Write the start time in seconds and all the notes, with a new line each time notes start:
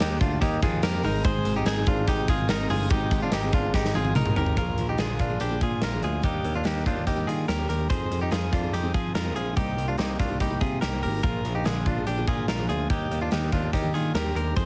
Already playing: A#3
0.00 D#2 D#4 G4, snare, closed hi-hat, tambourine
0.10 A#3 D#4 G4
0.21 D2 D4 F4, kick, closed hi-hat
0.41 D#2 D#4 G4, kick, closed hi-hat, tambourine
0.62 D#2 F3 A#3 D#4 F4 G4 G#4, kick, closed hi-hat, tambourine
0.82 F2 F3 A#3 D#4 G4 A#4, snare, closed hi-hat, tambourine
1.02 G#1 G#3 C4 D#4 G#4 A#4, open hi-hat, tambourine
1.24 G#2 D#3 G#3 C4 D#4 G#4 C5, kick, closed hi-hat, tambourine
1.45 G#1, closed hi-hat, tambourine
1.55 G#3 C4 D#4 G4 G#4
1.65 G#1 D#4 G#4, snare, closed hi-hat, tambourine
1.75 G#3 C4 D#4 G#4
1.86 G#1 D4 F4, kick, closed hi-hat
2.07 G#1 D#4 G4, kick, closed hi-hat, tambourine
2.27 G#1 G#3 C4 D#4 F4 G#4, kick, closed hi-hat, tambourine
2.48 G#1 G#3 C4 D#4 G#4 A#4, snare, closed hi-hat, tambourine
2.69 G1 G#3 C4 D#4 F4 G#4, open hi-hat, tambourine
2.90 G#1 G#2 D#3 G#3 C4 D#4 G4 G#4, kick, closed hi-hat, tambourine
3.11 G#1, kick, closed hi-hat, tambourine
3.21 G#3 C4 D4 D#4 F4 G#4
3.32 G#1 D#4 G4, snare, closed hi-hat, tambourine
3.42 G#3 C4 D#4 G#4
3.53 G1 D4 F4, kick, closed hi-hat, tambourine
3.74 G#1 D#4 G4, kick, snare
3.85 snare
3.94 G#1 G#3 C4 D#4 F4 G#4, high tom, tambourine
4.05 high tom
4.15 A#1 G#3 C4 D#4 G#4 A#4, mid tom, tambourine
4.26 mid tom
4.36 G#1 G#3 C4 D#4 G4 G#4 A#4, floor tom, tambourine
4.46 floor tom
4.57 A#1 F3 A#3 D4 F4 G#4 A#4, kick, closed hi-hat
4.78 A#1, closed hi-hat
4.89 D#4 G4
4.98 A#1 A#2 D3 F3 A#3 D4 F4 G#4, snare, closed hi-hat
5.19 A#1 D4 F4, kick, closed hi-hat
5.29 F3 A#3 D4 G#4
5.40 A#1 D4 G4, closed hi-hat
5.50 A#2 D3 F3 A#3 D4 G#4
5.61 A#2 F4 G#4, kick, closed hi-hat
5.82 A#1 F4 A#4, snare, closed hi-hat
5.92 F3 A#3 D4 G#4
6.02 D2 F4 G#4, closed hi-hat
6.22 D#2 G3 A#3 D4 D#4 G4, kick, closed hi-hat
6.44 D#2, closed hi-hat
6.55 D4 F4
6.64 D#2 D#3 G3 A#3 D4 D#4 G4, snare, closed hi-hat
6.86 D#2 D4 F4, kick, closed hi-hat
6.95 A#3 D4 G4
7.07 D#2 D#4 G4, kick, closed hi-hat
7.15 D#3 G3 A#3 D4 G4
7.27 D#3 F4 G#4, closed hi-hat
7.48 D#2 G4 A#4, snare, closed hi-hat
7.57 A#3 D4 G4
7.69 D#2 G4 A#4, closed hi-hat
7.89 F2 F3 C4 D#4 G#4 C5, kick, closed hi-hat
8.11 F2, closed hi-hat
8.22 D#4 G4
8.31 F2 F3 C4 D#4 F4 G#4, snare, closed hi-hat
8.53 F2 D4 F4, kick, closed hi-hat
8.62 C4 D#4 G#4
8.73 F2 D#4 G4, closed hi-hat
8.83 F3 C4 D#4 G#4
8.94 F3 F4 G#4, kick, closed hi-hat
9.15 F2 F4 A#4, snare, closed hi-hat
9.25 C4 D#4 G#4
9.36 A#1 F4 G#4, closed hi-hat
9.56 C2 G3 A#3 D#4 G4, kick, closed hi-hat
9.77 C2, closed hi-hat
9.88 D4 F4
9.97 C2 C3 G3 A#3 D#4 G4, snare, closed hi-hat
10.20 C2 D4 F4, kick, closed hi-hat
10.29 A#3 D#4 G4
10.40 C2 D#4 G4, kick, closed hi-hat
10.50 C3 G3 A#3 D#4 G4
10.61 C3 F4 G#4, kick, closed hi-hat
10.81 C2 G4 A#4, snare, closed hi-hat
10.92 A#3 D#4 G4
11.03 G#1 G4 A#4, open hi-hat
11.23 A#1 F3 A#3 D4 F4 G#4 A#4, kick, closed hi-hat
11.45 A#1, closed hi-hat
11.55 D#4 G4
11.64 A#1 A#2 D3 F3 A#3 D4 F4 G#4, snare, closed hi-hat
11.86 A#1 D4 F4, kick, closed hi-hat
11.96 F3 A#3 D4 G#4
12.07 A#1 D4 G4, closed hi-hat
12.17 A#2 D3 F3 A#3 D4 G#4
12.27 A#2 F4 G#4, kick, closed hi-hat
12.48 A#1 F4 A#4, snare, closed hi-hat
12.58 F3 A#3 D4 G#4
12.69 D2 F4 G#4, closed hi-hat
12.90 D#2 G3 A#3 D4 D#4 G4, kick, closed hi-hat
13.11 D#2, closed hi-hat
13.22 D4 F4
13.31 D#2 D#3 G3 A#3 D4 D#4 G4, snare, closed hi-hat
13.52 D#2 D4 F4, kick, closed hi-hat
13.61 A#3 D4 G4
13.73 D#2 D#4 G4, kick, closed hi-hat
13.82 D#3 G3 A#3 D4 G4
13.94 D#3 F4 G#4, closed hi-hat
14.14 D#2 G4 A#4, snare, closed hi-hat
14.24 A#3 D4 G4
14.35 D#2 G4 A#4, closed hi-hat
14.55 F2 F3 C4 D#4 G#4 C5, kick, closed hi-hat